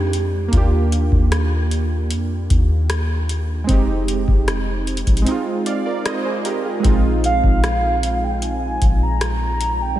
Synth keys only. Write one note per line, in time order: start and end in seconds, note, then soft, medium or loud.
0.00 0.47 G#3 medium
0.00 0.48 C4 medium
0.00 0.50 D#4 medium
0.00 0.51 G4 medium
0.48 3.62 A#3 medium
0.48 3.64 D4 medium
0.54 3.65 F4 medium
0.54 3.67 G4 medium
3.64 5.21 G#3 medium
3.64 5.23 C4 medium
3.70 5.24 D#4 medium
3.70 5.26 G4 medium
5.22 6.79 G#3 medium
5.22 6.81 C4 medium
5.28 6.82 D#4 medium
5.28 5.68 F4 medium
5.66 5.85 D5 medium
5.66 5.85 F5 medium
5.86 6.05 A#4 medium
5.86 6.05 D5 medium
6.05 6.24 C5 medium
6.05 6.24 D#5 medium
6.25 6.44 G#4 medium
6.25 6.44 C5 medium
6.45 6.64 G4 medium
6.45 6.64 A#4 medium
6.65 6.88 F4 soft
6.65 7.02 G#4 medium
6.80 9.94 G#3 medium
6.80 9.95 C4 medium
6.86 9.97 D#4 medium
6.86 9.98 F4 medium
9.96 10.00 G3 medium